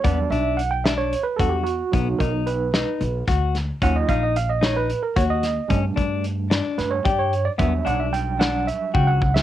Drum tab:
HH |x-x-x-x-x-x-x-|x-x-x-x-x-x-x-|x-x-x-x-x-x-x-|x-x-x-x-x-x-x-|
SD |------o-------|------o---o-o-|------o-----o-|------o-o-----|
BD |o---------o---|o-o-------o---|o-o-------o---|o-o-------o---|

HH |x-x-x-x-x-----|
SD |------o------o|
BD |o---------o-o-|